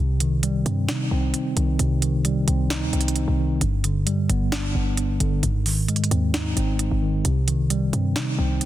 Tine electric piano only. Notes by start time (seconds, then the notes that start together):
Already playing: C3
0.20 D#3
0.43 G3
0.66 C4
0.88 D#4
1.11 C4
1.57 D#3
1.79 C3
2.02 D#3
2.25 G3
2.48 C4
2.70 D#4
2.93 C4
3.39 D#3
3.61 G2
3.84 D3
4.07 G3
4.29 B3
4.52 D4
4.75 B3
5.20 D3
5.43 G#2
5.66 D#3
5.88 G#3
6.11 C4
6.34 D#4
6.57 C4
7.02 D#3
7.25 C3
7.48 D#3
7.70 G3
7.93 C4
8.16 D#4
8.38 C4